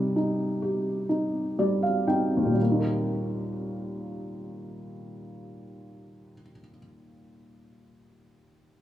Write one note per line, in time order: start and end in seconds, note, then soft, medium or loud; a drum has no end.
0.00 2.56 C3 medium
0.00 1.55 G3 soft
0.00 0.15 D#4 soft
0.00 downlifter medium
0.16 1.08 D#4 soft
0.62 2.56 G4 soft
1.09 2.06 D#4 soft
1.59 2.52 G3 soft
1.59 1.82 D5 soft
1.83 2.06 F5 soft
2.07 2.57 D#4 soft
2.07 2.55 G5 soft
2.37 6.34 D#2 soft
2.45 6.42 A#2 soft
2.54 6.51 G3 soft
2.62 6.60 A#3 soft
2.71 6.69 D#4 soft
2.80 6.77 A#4 soft